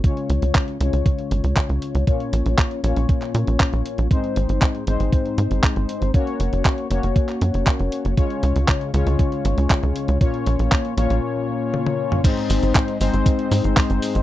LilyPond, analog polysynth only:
\new Staff \with { instrumentName = "Analog polysynth" } { \time 4/4 \key des \major \tempo 4 = 118 <des aes des' f' des''>4. <des aes des' f' des''>2~ <des aes des' f' des''>8 | <bes, bes des' f' des''>4. <bes, bes des' f' des''>2~ <bes, bes des' f' des''>8 | <aes, aes c' ees' c''>4. <aes, aes c' ees' c''>2~ <aes, aes c' ees' c''>8 | <bes des' ges' des''>4. <bes des' ges' des''>2~ <bes des' ges' des''>8 |
<des aes des' f' des''>4. <des aes des' f' des''>2~ <des aes des' f' des''>8 | <bes, bes des' f' des''>4. <bes, bes des' f' des''>2~ <bes, bes des' f' des''>8 | <aes, aes c' ees' c''>4. <aes, aes c' ees' c''>2~ <aes, aes c' ees' c''>8 | }